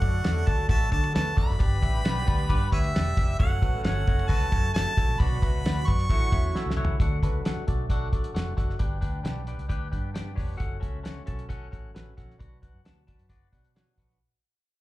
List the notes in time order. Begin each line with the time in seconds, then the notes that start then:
Already playing: D3 F#3 A3 D4 F#4 A4 F#5
0.01 F#2 F#4 A4 D5, kick, ride
0.24 E2 F#4 A4 D5, snare, ride
0.46 D2 F#4 A4 D5 A5, kick, ride
0.69 A1 F#4 A4 E5 A5, kick, ride
0.91 D3 F#4 A4 D5 A5, kick, ride
1.04 ride
1.13 D2 F#4 A4 B4 A5, snare, ride
1.36 F1 F#4 A4 D5 B5, kick, snare, ride
1.50 F#1, snare
1.59 G1 G2 G3 B3 D4 G4 B4 D5, kick, ride
1.82 A1 G4 B4 E5, kick, ride
2.04 B1 G4 B4 D5, snare, ride
2.26 D2 G4 B4 D5, kick, ride
2.49 G2 G4 B4 D5, kick, ride
2.72 D2 G4 B4 C#5 E5, kick, ride
2.84 ride
2.95 E1 G4 B4 D5, snare, ride
3.17 F1 G4 B4 E5, kick, snare, ride
3.39 F#1 F#3 A3 C#4 F#4 A4 C#5 F#5, kick, ride
3.62 A1 F#4 A4 B4, kick, ride
3.84 G1 F#4 A4 C#5 F#5, snare, ride
4.07 F#1 F#4 A4 C#5, kick, ride
4.19 ride
4.28 C#2 F#4 A4 B4 A5, kick, ride
4.51 F#2 F#4 A4 C#5, kick, ride
4.74 F#1 F#4 A4 C#5 A5, snare, ride
4.97 A1 F#4 A4 C#5, kick, ride
5.09 A#1
5.20 B1 B2 F#3 B3 D4 F#4 B4 D5 B5, kick, ride
5.42 C#2 F#4 B4 E5, kick, ride
5.65 D2 F#4 B4 D5, snare, ride
5.87 F#2 F#4 B4 D5 C#6, kick, ride
6.00 ride
6.09 A1 A2 F#3 A3 C#4 E4 F#4 A4 C#5 F#5, kick, ride
6.32 E2 E4 F#4 A4 C#5 E5, kick, ride
6.55 E4 F#4 A4 C#5 E5, snare
6.66 C#2
6.70 snare
6.76 C2 E4 F#4 A4 C#5 F#5
6.85 C#2, floor tom
7.00 D2 D3 F#3 A3 D4 F#4 A4 F#5, kick, closed hi-hat
7.23 C#2 D4 F#4 A4 B4, kick, closed hi-hat
7.45 D4 F#4 A4 F#5, snare, closed hi-hat
7.57 muted fingered electric bass stroke
7.67 B1 D4 F#4 A4 D5, kick, closed hi-hat
7.90 D4 F#4 A4 F#5, kick, closed hi-hat
8.12 A1 D4 F#4 A4 D5, kick, closed hi-hat
8.24 closed hi-hat
8.34 F1 D4 F#4 A4 F#5, snare, closed hi-hat
8.56 F#1 D4 F#4 A4 F#5, kick, snare, closed hi-hat
8.70 snare
8.79 G1 G2 G3 B3 D4 G4 B4 G5, kick, closed hi-hat
9.01 D2 D4 G4 B4 G5, kick, closed hi-hat
9.23 B1 D4 G4 B4 G5, snare, closed hi-hat
9.47 D4 G4 B4 G5, closed hi-hat
9.58 C#2, closed hi-hat
9.68 D2 D4 G4 B4 G5, kick, closed hi-hat
9.91 G2 D4 G4 B4 G5, kick, closed hi-hat
10.14 D4 G4 B4 G5, snare, closed hi-hat
10.35 F1 D4 G4 B4 C#5, kick, snare, open hi-hat
10.57 F#1 C#4 F#4 A4 F#5, kick, closed hi-hat
10.62 F#3 A3 C#4 F#4
10.80 C#2 C#4 F#4 A4 E5, kick, closed hi-hat
11.03 C#4 F#4 A4 F#5, snare, closed hi-hat
11.26 B1 C#4 F#4 A4 A5, kick, closed hi-hat
11.39 closed hi-hat
11.49 C#4 F#4 A4 F#5, kick, closed hi-hat
11.71 A1 C#4 F#4 A4 F#5, kick, closed hi-hat
11.94 A1 C#4 F#4 A4 B4, snare, closed hi-hat
12.17 A#1 C#4 F#4 A4 F#5, kick, snare, closed hi-hat
12.30 snare
12.39 B1 B2 D4 F#4 B4 F#5, kick, closed hi-hat
12.43 F#3 B3 D4 F#4
12.62 D4 F#4 B4 F#5, kick, closed hi-hat
12.74 F#2
12.85 D2 D4 F#4 B4 A5, snare, closed hi-hat
13.07 D4 F#4 B4 A5, kick, closed hi-hat
13.19 F#2, closed hi-hat
13.29 F#1 D4 F#4 B4 D5, kick, closed hi-hat
13.52 B2 F#3 B3 D4 F#4 B4 F#5, kick, closed hi-hat
13.64 closed hi-hat
13.75 F#3 B3 D4 F#4 B4 C#5, snare, closed hi-hat
13.97 A#1 D4 F#4 B4 F#5, kick, snare, closed hi-hat
14.10 snare